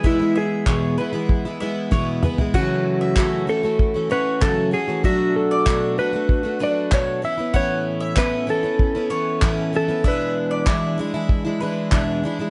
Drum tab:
CC |----------------|x---------------|----------------|----------------|
CP |----x-----------|----x-------x---|----x-------x---|----x-------x---|
SD |------------o---|----------------|----------------|----------------|
T2 |--------------o-|----------------|----------------|----------------|
FT |---------------o|----------------|----------------|----------------|
BD |o---o---o---o---|o---o---o---o---|o---o---o---o---|o---o---o---o---|

CC |----------------|
CP |----x-------x---|
SD |----------------|
T2 |----------------|
FT |----------------|
BD |o---o---o---o---|